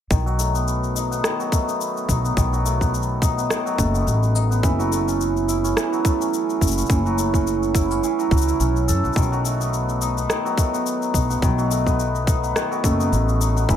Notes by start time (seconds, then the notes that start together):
0.11 B1 D#3, kick, shaker
0.26 F#3, shaker
0.39 A3, shaker
0.55 B3, shaker
0.68 shaker
0.84 shaker
0.95 D#4, shaker
1.11 B3, shaker
1.24 D#3, cross-stick, shaker
1.40 F#3, shaker
1.52 A3, kick, shaker
1.68 B3, shaker
1.81 shaker
1.97 shaker
2.09 B1 D#4, kick, shaker
2.24 B3, shaker
2.37 B1 D#3, kick, shaker
2.53 F#3, shaker
2.65 A3, shaker
2.81 B3, kick, shaker
2.94 shaker
3.03 shaker
3.22 D#4, kick, shaker
3.38 B3, shaker
3.50 D#3, cross-stick, shaker
3.66 F#3, shaker
3.78 F#1 A3, kick, shaker
3.94 B3, shaker
4.07 A1, shaker
4.23 shaker
4.35 D#4, shaker
4.50 B3, shaker
4.63 F#1 E3, kick, shaker
4.79 F#3, shaker
4.91 A3, shaker
5.07 C#4, shaker
5.21 shaker
5.37 shaker
5.48 E4, shaker
5.64 C#4, shaker
5.76 E3, cross-stick, shaker
5.92 F#3, shaker
6.05 A3, kick, shaker
6.21 C#4, shaker
6.34 shaker
6.50 shaker
6.61 F#1 E4, kick, shaker
6.67 shaker
6.71 shaker
6.77 C#4, shaker
6.81 shaker
6.86 F#1 E3, kick, shaker
6.90 shaker
7.06 F#3, shaker
7.18 A3, shaker
7.34 C#4, kick, shaker
7.47 shaker
7.63 shaker
7.75 E4, kick, shaker
7.91 C#4, shaker
8.03 E3, shaker
8.19 F#3, shaker
8.31 C#2 F#3, kick, shaker
8.37 shaker
8.42 shaker
8.47 E4, shaker
8.60 B1 C#4, shaker
8.76 shaker
8.88 F#2 A4, shaker
9.04 B1 F#3, shaker
9.13 B1 D#3, kick, shaker
9.17 shaker
9.32 F#3, shaker
9.44 A3, shaker
9.60 B3, shaker
9.74 shaker
9.89 shaker
10.01 D#4, shaker
10.17 B3, shaker
10.29 D#3, cross-stick, shaker
10.45 F#3, shaker
10.58 A3, kick, shaker
10.73 B3, shaker
10.86 shaker
11.02 shaker
11.14 B1 D#4, kick, shaker
11.30 B3, shaker
11.42 B1 D#3, kick, shaker
11.58 F#3, shaker
11.71 A3, shaker
11.87 B3, kick, shaker
12.00 shaker
12.15 shaker
12.27 D#4, kick, shaker
12.43 B3, shaker
12.56 D#3, cross-stick, shaker
12.71 F#3, shaker
12.84 F#1 A3, kick, shaker
13.00 B3, shaker
13.12 A1, shaker
13.29 shaker
13.40 D#4, shaker
13.57 B3, shaker
13.69 F#1 E3, kick, shaker